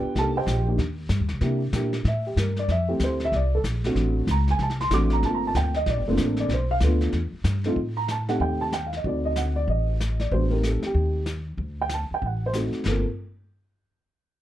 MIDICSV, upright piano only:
0, 0, Header, 1, 2, 480
1, 0, Start_track
1, 0, Key_signature, -2, "minor"
1, 0, Tempo, 317628
1, 239, Time_signature, 4, 2, 24, 8
1, 21784, End_track
2, 0, Start_track
2, 0, Title_t, "Upright piano"
2, 0, Program_c, 0, 0
2, 0, Note_on_c, 0, 59, 70
2, 0, Note_on_c, 0, 62, 60
2, 0, Note_on_c, 0, 65, 64
2, 0, Note_on_c, 0, 67, 86
2, 0, Note_on_c, 0, 71, 80
2, 0, Note_on_c, 0, 74, 83
2, 0, Note_on_c, 0, 79, 91
2, 204, Note_off_c, 0, 59, 0
2, 204, Note_off_c, 0, 79, 0
2, 207, Note_off_c, 0, 74, 0
2, 209, Note_off_c, 0, 71, 0
2, 211, Note_off_c, 0, 62, 0
2, 211, Note_off_c, 0, 65, 0
2, 217, Note_off_c, 0, 67, 0
2, 242, Note_on_c, 0, 62, 48
2, 248, Note_on_c, 0, 58, 61
2, 252, Note_on_c, 0, 67, 65
2, 262, Note_on_c, 0, 63, 47
2, 280, Note_on_c, 0, 81, 99
2, 287, Note_on_c, 0, 69, 73
2, 508, Note_off_c, 0, 62, 0
2, 511, Note_off_c, 0, 58, 0
2, 513, Note_off_c, 0, 67, 0
2, 518, Note_off_c, 0, 63, 0
2, 549, Note_off_c, 0, 81, 0
2, 552, Note_off_c, 0, 69, 0
2, 562, Note_on_c, 0, 79, 83
2, 564, Note_on_c, 0, 72, 69
2, 566, Note_on_c, 0, 75, 61
2, 570, Note_on_c, 0, 67, 78
2, 996, Note_off_c, 0, 79, 0
2, 997, Note_off_c, 0, 72, 0
2, 998, Note_off_c, 0, 75, 0
2, 1000, Note_off_c, 0, 67, 0
2, 1021, Note_on_c, 0, 58, 59
2, 1025, Note_on_c, 0, 63, 55
2, 1028, Note_on_c, 0, 67, 68
2, 1032, Note_on_c, 0, 62, 56
2, 1182, Note_off_c, 0, 58, 0
2, 1184, Note_off_c, 0, 63, 0
2, 1185, Note_off_c, 0, 67, 0
2, 1187, Note_off_c, 0, 62, 0
2, 2130, Note_on_c, 0, 58, 60
2, 2147, Note_on_c, 0, 64, 59
2, 2149, Note_on_c, 0, 62, 48
2, 2153, Note_on_c, 0, 67, 62
2, 2411, Note_off_c, 0, 58, 0
2, 2420, Note_off_c, 0, 64, 0
2, 2421, Note_off_c, 0, 62, 0
2, 2423, Note_off_c, 0, 67, 0
2, 2645, Note_on_c, 0, 67, 65
2, 2649, Note_on_c, 0, 58, 59
2, 2649, Note_on_c, 0, 62, 53
2, 2655, Note_on_c, 0, 64, 51
2, 2908, Note_off_c, 0, 67, 0
2, 2910, Note_off_c, 0, 62, 0
2, 2911, Note_off_c, 0, 58, 0
2, 2913, Note_off_c, 0, 64, 0
2, 3137, Note_on_c, 0, 76, 97
2, 3416, Note_off_c, 0, 76, 0
2, 3425, Note_on_c, 0, 67, 64
2, 3595, Note_off_c, 0, 67, 0
2, 3604, Note_on_c, 0, 70, 65
2, 3888, Note_off_c, 0, 70, 0
2, 3918, Note_on_c, 0, 74, 90
2, 4081, Note_off_c, 0, 74, 0
2, 4095, Note_on_c, 0, 76, 108
2, 4360, Note_on_c, 0, 67, 66
2, 4361, Note_on_c, 0, 57, 61
2, 4365, Note_on_c, 0, 64, 50
2, 4374, Note_off_c, 0, 76, 0
2, 4374, Note_on_c, 0, 60, 54
2, 4590, Note_on_c, 0, 72, 79
2, 4861, Note_off_c, 0, 72, 0
2, 4905, Note_on_c, 0, 76, 117
2, 4991, Note_off_c, 0, 57, 0
2, 4991, Note_off_c, 0, 67, 0
2, 4993, Note_off_c, 0, 64, 0
2, 4998, Note_off_c, 0, 60, 0
2, 5055, Note_off_c, 0, 76, 0
2, 5072, Note_on_c, 0, 74, 85
2, 5342, Note_off_c, 0, 74, 0
2, 5362, Note_on_c, 0, 69, 94
2, 5462, Note_off_c, 0, 69, 0
2, 5827, Note_on_c, 0, 62, 56
2, 5828, Note_on_c, 0, 57, 65
2, 5834, Note_on_c, 0, 60, 62
2, 5840, Note_on_c, 0, 66, 73
2, 6444, Note_off_c, 0, 57, 0
2, 6444, Note_off_c, 0, 62, 0
2, 6447, Note_off_c, 0, 60, 0
2, 6450, Note_off_c, 0, 66, 0
2, 6512, Note_on_c, 0, 82, 83
2, 6781, Note_off_c, 0, 82, 0
2, 6807, Note_on_c, 0, 80, 108
2, 6898, Note_off_c, 0, 80, 0
2, 6921, Note_on_c, 0, 80, 59
2, 6956, Note_off_c, 0, 80, 0
2, 6989, Note_on_c, 0, 81, 86
2, 7259, Note_off_c, 0, 81, 0
2, 7265, Note_on_c, 0, 84, 89
2, 7433, Note_off_c, 0, 84, 0
2, 7444, Note_on_c, 0, 60, 62
2, 7447, Note_on_c, 0, 57, 73
2, 7454, Note_on_c, 0, 62, 64
2, 7455, Note_on_c, 0, 66, 70
2, 7464, Note_on_c, 0, 86, 93
2, 7737, Note_off_c, 0, 86, 0
2, 7750, Note_on_c, 0, 82, 84
2, 7914, Note_off_c, 0, 57, 0
2, 7916, Note_off_c, 0, 82, 0
2, 7917, Note_off_c, 0, 60, 0
2, 7922, Note_off_c, 0, 62, 0
2, 7922, Note_off_c, 0, 66, 0
2, 7936, Note_on_c, 0, 58, 51
2, 7936, Note_on_c, 0, 81, 85
2, 7937, Note_on_c, 0, 57, 57
2, 7940, Note_on_c, 0, 65, 57
2, 7951, Note_on_c, 0, 60, 47
2, 8078, Note_off_c, 0, 81, 0
2, 8079, Note_on_c, 0, 82, 85
2, 8230, Note_off_c, 0, 82, 0
2, 8270, Note_on_c, 0, 81, 89
2, 8405, Note_off_c, 0, 81, 0
2, 8412, Note_on_c, 0, 79, 80
2, 8641, Note_off_c, 0, 57, 0
2, 8641, Note_off_c, 0, 58, 0
2, 8643, Note_off_c, 0, 65, 0
2, 8648, Note_off_c, 0, 60, 0
2, 8690, Note_off_c, 0, 79, 0
2, 8708, Note_on_c, 0, 75, 101
2, 8874, Note_off_c, 0, 75, 0
2, 8908, Note_on_c, 0, 74, 89
2, 9178, Note_off_c, 0, 74, 0
2, 9182, Note_on_c, 0, 57, 68
2, 9185, Note_on_c, 0, 60, 71
2, 9197, Note_on_c, 0, 62, 78
2, 9198, Note_on_c, 0, 58, 70
2, 9200, Note_on_c, 0, 65, 68
2, 9360, Note_off_c, 0, 65, 0
2, 9400, Note_on_c, 0, 69, 60
2, 9664, Note_off_c, 0, 69, 0
2, 9676, Note_on_c, 0, 74, 92
2, 9799, Note_off_c, 0, 57, 0
2, 9801, Note_off_c, 0, 60, 0
2, 9807, Note_off_c, 0, 62, 0
2, 9808, Note_off_c, 0, 58, 0
2, 9838, Note_off_c, 0, 74, 0
2, 9879, Note_on_c, 0, 72, 75
2, 10140, Note_on_c, 0, 77, 108
2, 10144, Note_off_c, 0, 72, 0
2, 10245, Note_off_c, 0, 77, 0
2, 10324, Note_on_c, 0, 57, 72
2, 10328, Note_on_c, 0, 62, 61
2, 10330, Note_on_c, 0, 59, 69
2, 10333, Note_on_c, 0, 65, 78
2, 10796, Note_off_c, 0, 57, 0
2, 10798, Note_off_c, 0, 62, 0
2, 10799, Note_off_c, 0, 59, 0
2, 10800, Note_off_c, 0, 65, 0
2, 11570, Note_on_c, 0, 57, 78
2, 11573, Note_on_c, 0, 60, 67
2, 11576, Note_on_c, 0, 63, 73
2, 11591, Note_on_c, 0, 65, 81
2, 11731, Note_off_c, 0, 57, 0
2, 11733, Note_off_c, 0, 60, 0
2, 11734, Note_off_c, 0, 63, 0
2, 11742, Note_off_c, 0, 65, 0
2, 12042, Note_on_c, 0, 82, 88
2, 12220, Note_off_c, 0, 82, 0
2, 12258, Note_on_c, 0, 81, 84
2, 12521, Note_on_c, 0, 60, 56
2, 12525, Note_on_c, 0, 57, 64
2, 12526, Note_on_c, 0, 63, 58
2, 12529, Note_on_c, 0, 78, 81
2, 12530, Note_on_c, 0, 67, 69
2, 12533, Note_off_c, 0, 81, 0
2, 12704, Note_off_c, 0, 78, 0
2, 12713, Note_on_c, 0, 79, 79
2, 13000, Note_off_c, 0, 79, 0
2, 13012, Note_on_c, 0, 81, 93
2, 13149, Note_off_c, 0, 60, 0
2, 13151, Note_off_c, 0, 57, 0
2, 13151, Note_off_c, 0, 63, 0
2, 13153, Note_off_c, 0, 67, 0
2, 13186, Note_off_c, 0, 81, 0
2, 13198, Note_on_c, 0, 79, 69
2, 13348, Note_off_c, 0, 79, 0
2, 13396, Note_on_c, 0, 77, 68
2, 13528, Note_off_c, 0, 77, 0
2, 13549, Note_on_c, 0, 75, 71
2, 13679, Note_on_c, 0, 60, 46
2, 13682, Note_on_c, 0, 57, 47
2, 13683, Note_on_c, 0, 63, 44
2, 13684, Note_off_c, 0, 75, 0
2, 13689, Note_on_c, 0, 66, 51
2, 13708, Note_on_c, 0, 74, 74
2, 13978, Note_off_c, 0, 74, 0
2, 13982, Note_on_c, 0, 75, 87
2, 14151, Note_off_c, 0, 75, 0
2, 14163, Note_on_c, 0, 78, 72
2, 14445, Note_off_c, 0, 78, 0
2, 14447, Note_on_c, 0, 74, 86
2, 14623, Note_off_c, 0, 74, 0
2, 14652, Note_on_c, 0, 75, 82
2, 15006, Note_off_c, 0, 60, 0
2, 15007, Note_off_c, 0, 57, 0
2, 15008, Note_off_c, 0, 63, 0
2, 15010, Note_off_c, 0, 66, 0
2, 15366, Note_off_c, 0, 75, 0
2, 15421, Note_on_c, 0, 74, 74
2, 15591, Note_off_c, 0, 74, 0
2, 15596, Note_on_c, 0, 72, 74
2, 15610, Note_on_c, 0, 59, 46
2, 15614, Note_on_c, 0, 56, 47
2, 15617, Note_on_c, 0, 62, 48
2, 15618, Note_on_c, 0, 66, 56
2, 15869, Note_off_c, 0, 59, 0
2, 15870, Note_off_c, 0, 56, 0
2, 15872, Note_off_c, 0, 62, 0
2, 15873, Note_off_c, 0, 66, 0
2, 15880, Note_on_c, 0, 70, 80
2, 15882, Note_off_c, 0, 72, 0
2, 15886, Note_on_c, 0, 57, 48
2, 15896, Note_on_c, 0, 60, 43
2, 15896, Note_on_c, 0, 67, 54
2, 15900, Note_on_c, 0, 63, 48
2, 16060, Note_off_c, 0, 70, 0
2, 16107, Note_on_c, 0, 69, 71
2, 16378, Note_off_c, 0, 69, 0
2, 16394, Note_off_c, 0, 67, 0
2, 16417, Note_on_c, 0, 67, 76
2, 16921, Note_off_c, 0, 57, 0
2, 16926, Note_off_c, 0, 60, 0
2, 16927, Note_off_c, 0, 63, 0
2, 17010, Note_off_c, 0, 67, 0
2, 17855, Note_on_c, 0, 79, 88
2, 18009, Note_off_c, 0, 79, 0
2, 18041, Note_on_c, 0, 81, 84
2, 18307, Note_off_c, 0, 81, 0
2, 18348, Note_on_c, 0, 79, 82
2, 18496, Note_off_c, 0, 79, 0
2, 18528, Note_on_c, 0, 78, 67
2, 18790, Note_off_c, 0, 78, 0
2, 18833, Note_on_c, 0, 72, 94
2, 18923, Note_off_c, 0, 72, 0
2, 18964, Note_on_c, 0, 63, 53
2, 18967, Note_on_c, 0, 66, 56
2, 18969, Note_on_c, 0, 60, 44
2, 18974, Note_on_c, 0, 57, 53
2, 19435, Note_off_c, 0, 60, 0
2, 19438, Note_off_c, 0, 63, 0
2, 19440, Note_off_c, 0, 66, 0
2, 19443, Note_off_c, 0, 57, 0
2, 19454, Note_on_c, 0, 58, 51
2, 19456, Note_on_c, 0, 65, 52
2, 19458, Note_on_c, 0, 60, 53
2, 19468, Note_on_c, 0, 69, 64
2, 19477, Note_on_c, 0, 70, 67
2, 19712, Note_off_c, 0, 58, 0
2, 19713, Note_off_c, 0, 65, 0
2, 19714, Note_off_c, 0, 60, 0
2, 19719, Note_off_c, 0, 69, 0
2, 19734, Note_off_c, 0, 70, 0
2, 21784, End_track
0, 0, End_of_file